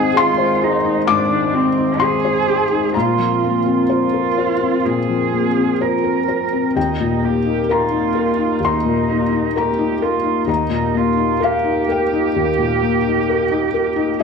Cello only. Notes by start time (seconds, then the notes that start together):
Already playing: G#4
0.17 F4
0.63 D#4
1.07 D4
1.55 C4
2.02 G#4
2.96 F4
3.92 F4
4.86 G#4
5.81 A#4
6.77 D#4
7.25 G4
7.72 F4
8.65 D#4
9.57 G4
10.02 F4
10.48 D#4
10.97 F4
11.43 G4
14.19 G#4